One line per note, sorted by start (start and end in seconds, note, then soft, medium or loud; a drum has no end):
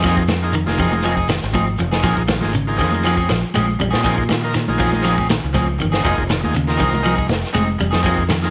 0.00 0.65 F2 medium
0.00 0.24 F3 medium
0.00 shekere medium
0.04 0.23 F3 medium
0.04 0.23 A#3 medium
0.04 0.18 C4 medium
0.04 0.17 D#4 medium
0.04 0.23 D#4 medium
0.04 0.16 G#4 medium
0.04 0.24 G#4 loud
0.04 kick medium
0.04 snare soft
0.04 closed hi-hat medium
0.17 muted clean electric guitar stroke soft
0.17 kick medium
0.17 closed hi-hat soft
0.28 muted clean electric guitar stroke soft
0.28 snare medium
0.28 closed hi-hat medium
0.28 high conga medium
0.28 shekere medium
0.41 0.54 F3 medium
0.41 0.54 A#3 medium
0.41 0.54 D#4 medium
0.41 0.54 G#4 loud
0.41 muted clean electric guitar stroke soft
0.41 closed hi-hat soft
0.41 shekere soft
0.53 0.75 D#3 medium
0.53 muted clean electric guitar stroke soft
0.53 closed hi-hat medium
0.53 shekere medium
0.66 1.39 F1 medium
0.66 1.14 F3 medium
0.66 1.15 A#3 medium
0.66 1.15 D#4 medium
0.66 1.15 G#4 loud
0.66 snare soft
0.66 high conga medium
0.78 1.00 F3 medium
0.78 0.93 C4 medium
0.78 0.93 D#4 medium
0.78 0.92 G#4 medium
0.78 kick medium
0.78 open hi-hat medium
0.78 low conga medium
0.78 shekere soft
0.91 muted clean electric guitar stroke soft
0.91 closed hi-hat soft
0.91 high conga medium
0.91 shekere medium
1.02 1.26 F3 medium
1.02 1.17 C4 medium
1.02 1.17 D#4 medium
1.02 1.16 G#4 loud
1.02 closed hi-hat medium
1.02 shekere medium
1.17 1.28 D#4 soft
1.17 1.28 G#4 medium
1.17 kick medium
1.17 closed hi-hat soft
1.28 1.50 D#3 medium
1.28 muted clean electric guitar stroke soft
1.28 snare medium
1.28 closed hi-hat medium
1.28 high conga medium
1.28 shekere medium
1.41 1.78 G#1 medium
1.41 snare soft
1.41 closed hi-hat soft
1.41 shekere soft
1.52 1.75 F3 medium
1.52 1.67 C4 medium
1.52 1.66 D#4 medium
1.52 1.65 G#4 medium
1.52 kick medium
1.52 closed hi-hat medium
1.52 high conga medium
1.52 shekere medium
1.67 muted clean electric guitar stroke soft
1.67 closed hi-hat soft
1.78 2.03 F1 medium
1.78 2.00 F3 medium
1.78 muted clean electric guitar stroke soft
1.78 closed hi-hat soft
1.78 low conga medium
1.78 shekere medium
1.92 2.04 D#4 soft
1.92 2.03 G#4 medium
1.92 snare medium
1.92 closed hi-hat soft
1.92 shekere soft
2.03 2.17 A#1 medium
2.03 2.22 F3 medium
2.03 2.17 F3 medium
2.03 2.24 F3 medium
2.03 2.22 A#3 medium
2.03 2.16 C4 medium
2.03 2.16 C#4 medium
2.03 2.23 D#4 medium
2.03 2.16 G#4 medium
2.03 2.23 G#4 medium
2.03 kick medium
2.03 closed hi-hat medium
2.03 shekere medium
2.17 2.41 A#1 medium
2.17 muted clean electric guitar stroke soft
2.17 kick medium
2.17 closed hi-hat soft
2.28 2.49 D#3 medium
2.28 muted clean electric guitar stroke soft
2.28 snare medium
2.28 closed hi-hat soft
2.28 high conga medium
2.28 shekere medium
2.41 2.78 G#1 medium
2.41 2.53 F3 medium
2.41 2.53 A#3 medium
2.41 2.54 D#4 medium
2.41 2.54 G#4 medium
2.41 muted clean electric guitar stroke soft
2.41 snare soft
2.41 closed hi-hat soft
2.41 high conga medium
2.41 shekere soft
2.52 2.75 C#3 medium
2.52 muted clean electric guitar stroke soft
2.52 closed hi-hat medium
2.52 shekere medium
2.67 3.15 F3 medium
2.67 3.15 A#3 medium
2.67 3.15 D#4 medium
2.67 3.16 G#4 loud
2.67 closed hi-hat soft
2.77 3.27 F2 medium
2.77 3.01 D#3 medium
2.77 2.92 F3 medium
2.77 2.92 C4 medium
2.77 2.91 C#4 medium
2.77 2.91 G#4 medium
2.77 kick medium
2.77 open hi-hat medium
2.77 low conga medium
2.77 shekere soft
2.92 muted clean electric guitar stroke soft
2.92 closed hi-hat soft
2.92 high conga medium
2.92 shekere medium
3.03 3.18 F3 medium
3.03 3.26 F3 medium
3.03 3.17 C4 medium
3.03 3.17 C#4 medium
3.03 3.16 G#4 medium
3.03 closed hi-hat medium
3.03 shekere medium
3.17 3.28 C4 soft
3.17 3.29 C#4 soft
3.17 3.28 G#4 medium
3.17 kick medium
3.17 closed hi-hat soft
3.29 3.43 A#1 medium
3.29 3.51 F3 medium
3.29 muted clean electric guitar stroke soft
3.29 snare medium
3.29 closed hi-hat soft
3.29 high conga medium
3.29 shekere medium
3.44 shekere soft
3.54 3.79 A#1 medium
3.54 3.68 F3 medium
3.54 3.76 G#3 medium
3.54 3.67 C4 medium
3.54 3.66 C#4 medium
3.54 3.66 G#4 medium
3.54 closed hi-hat medium
3.54 high conga medium
3.54 shekere medium
3.67 muted clean electric guitar stroke soft
3.67 closed hi-hat soft
3.79 3.93 A#1 medium
3.79 4.01 G3 medium
3.79 muted clean electric guitar stroke soft
3.79 closed hi-hat soft
3.79 low conga medium
3.79 shekere medium
3.90 4.02 C4 soft
3.90 4.03 C#4 medium
3.90 4.03 G#4 medium
3.90 snare medium
3.90 closed hi-hat soft
3.90 shekere soft
3.95 4.65 A#2 medium
4.04 4.17 F3 medium
4.04 4.23 F3 medium
4.04 4.26 F3 medium
4.04 4.23 A#3 medium
4.04 4.16 C4 medium
4.04 4.16 C#4 medium
4.04 4.24 D#4 medium
4.04 4.16 G#4 medium
4.04 4.24 G#4 loud
4.04 kick medium
4.04 closed hi-hat medium
4.04 shekere medium
4.17 muted clean electric guitar stroke soft
4.17 kick medium
4.17 closed hi-hat soft
4.29 4.51 D#3 medium
4.29 muted clean electric guitar stroke soft
4.29 snare medium
4.29 closed hi-hat medium
4.29 high conga medium
4.29 shekere medium
4.42 4.54 F3 medium
4.42 4.55 A#3 medium
4.42 4.55 D#4 medium
4.42 4.55 A#4 loud
4.42 muted clean electric guitar stroke soft
4.42 closed hi-hat soft
4.42 shekere soft
4.53 4.75 D#3 medium
4.53 muted clean electric guitar stroke soft
4.53 snare soft
4.53 closed hi-hat medium
4.53 shekere medium
4.68 5.40 A#1 medium
4.68 5.16 F3 medium
4.68 5.16 A#3 medium
4.68 5.16 D#4 medium
4.68 5.16 G#4 loud
4.68 high conga medium
4.78 4.92 F3 medium
4.78 5.00 F3 medium
4.78 4.91 C4 medium
4.78 4.91 C#4 medium
4.78 4.90 G#4 medium
4.78 kick medium
4.78 open hi-hat medium
4.78 low conga medium
4.78 shekere soft
4.92 muted clean electric guitar stroke soft
4.92 closed hi-hat soft
4.92 high conga medium
4.92 shekere medium
5.02 5.17 F3 medium
5.02 5.25 F3 medium
5.02 5.15 C4 medium
5.02 5.15 C#4 medium
5.02 5.15 G#4 loud
5.02 closed hi-hat medium
5.06 shekere medium
5.16 5.28 C4 soft
5.16 5.28 C#4 soft
5.16 5.28 G#4 soft
5.16 kick medium
5.16 closed hi-hat soft
5.16 high conga medium
5.29 5.51 D#3 medium
5.29 muted clean electric guitar stroke soft
5.29 snare medium
5.29 closed hi-hat medium
5.29 high conga loud
5.29 shekere medium
5.43 5.79 C#2 medium
5.43 closed hi-hat soft
5.43 shekere soft
5.53 5.67 F3 medium
5.53 5.75 F3 medium
5.53 5.68 C4 medium
5.53 5.67 C#4 medium
5.53 5.67 G#4 medium
5.53 kick medium
5.53 closed hi-hat medium
5.53 high conga medium
5.53 shekere medium
5.68 muted clean electric guitar stroke soft
5.68 closed hi-hat soft
5.79 6.04 G1 medium
5.79 6.01 D#3 medium
5.79 muted clean electric guitar stroke soft
5.79 closed hi-hat soft
5.79 low conga medium
5.79 shekere medium
5.92 6.02 C4 medium
5.92 6.03 C#4 soft
5.92 6.03 G#4 medium
5.92 snare medium
5.92 closed hi-hat soft
5.92 shekere soft
6.03 6.17 F1 loud
6.03 6.23 F3 medium
6.03 6.23 A#3 medium
6.03 6.16 D#4 medium
6.03 6.24 D#4 medium
6.03 6.15 G#4 loud
6.03 6.24 G#4 loud
6.03 muted clean electric guitar stroke medium
6.03 kick medium
6.03 closed hi-hat medium
6.03 shekere medium
6.16 6.42 F1 medium
6.16 muted clean electric guitar stroke soft
6.16 kick medium
6.16 closed hi-hat soft
6.27 6.51 D#3 medium
6.27 muted clean electric guitar stroke soft
6.27 snare medium
6.27 closed hi-hat medium
6.27 high conga medium
6.27 shekere medium
6.41 6.78 D#2 medium
6.41 6.55 F3 medium
6.41 6.55 A#3 medium
6.41 6.55 D#4 medium
6.41 6.55 G#4 medium
6.41 muted clean electric guitar stroke soft
6.41 closed hi-hat soft
6.41 high conga medium
6.41 shekere soft
6.53 6.76 C#3 medium
6.53 muted clean electric guitar stroke soft
6.53 closed hi-hat medium
6.53 shekere medium
6.67 7.15 F3 medium
6.67 7.15 A#3 medium
6.67 7.16 D#4 medium
6.67 7.16 A#4 loud
6.67 snare soft
6.67 closed hi-hat soft
6.77 7.27 C2 medium
6.77 7.01 D#3 medium
6.77 6.92 C4 medium
6.77 6.90 D#4 medium
6.77 6.90 G#4 medium
6.77 kick medium
6.77 open hi-hat medium
6.77 low conga medium
6.77 shekere soft
6.91 muted clean electric guitar stroke soft
6.91 closed hi-hat soft
6.91 high conga medium
6.91 shekere medium
7.03 7.26 F3 medium
7.03 7.17 C4 medium
7.03 7.16 D#4 medium
7.03 7.14 G#4 medium
7.03 closed hi-hat medium
7.03 shekere medium
7.15 7.27 D#4 soft
7.15 7.27 G#4 medium
7.15 kick medium
7.15 closed hi-hat soft
7.28 7.43 F1 medium
7.28 muted clean electric guitar stroke soft
7.28 snare medium
7.28 closed hi-hat soft
7.28 high conga medium
7.28 shekere medium
7.43 snare soft
7.43 shekere soft
7.53 7.79 F1 medium
7.53 7.75 G#3 medium
7.53 7.67 C4 medium
7.53 7.68 D#4 medium
7.53 7.65 G#4 medium
7.53 closed hi-hat medium
7.53 high conga medium
7.53 shekere medium
7.66 muted clean electric guitar stroke soft
7.66 closed hi-hat soft
7.78 7.93 F1 medium
7.78 8.01 G3 medium
7.78 muted clean electric guitar stroke soft
7.78 closed hi-hat soft
7.78 low conga medium
7.78 shekere medium
7.91 8.50 F2 medium
7.91 8.02 D#4 soft
7.91 8.02 G#4 medium
7.91 snare medium
7.91 closed hi-hat soft
7.91 shekere soft
8.02 8.23 F3 medium
8.02 8.26 F3 medium
8.02 8.23 A#3 medium
8.02 8.17 C4 medium
8.02 8.24 D#4 medium
8.02 8.15 G#4 medium
8.02 8.24 G#4 loud
8.02 muted clean electric guitar stroke medium
8.02 kick medium
8.02 closed hi-hat medium
8.02 shekere medium
8.16 muted clean electric guitar stroke soft
8.16 kick medium
8.16 closed hi-hat soft
8.28 8.50 D#3 medium
8.28 muted clean electric guitar stroke soft
8.28 snare medium
8.28 closed hi-hat soft
8.28 high conga medium
8.28 shekere medium
8.42 8.50 F3 medium
8.42 8.50 A#3 medium
8.42 8.50 D#4 medium
8.42 8.50 G#4 medium
8.42 muted clean electric guitar stroke soft
8.42 snare soft
8.42 closed hi-hat soft
8.42 shekere soft